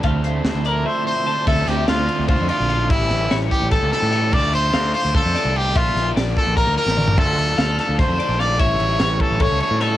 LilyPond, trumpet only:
\new Staff \with { instrumentName = "Trumpet" } { \time 7/8 \key d \minor \tempo 4 = 148 r4. bes'8 c''8 c''4 | a'8 g'8 f'4 f'8 f'4 | e'4 r8 g'8 a'8 a'4 | d''8 c''4 c''8 a'4 g'8 |
f'4 r8 a'8 bes'8 bes'4 | a'4. a'8 c''4 d''8 | cis''4. a'8 cis''8 cis''8 a'8 | }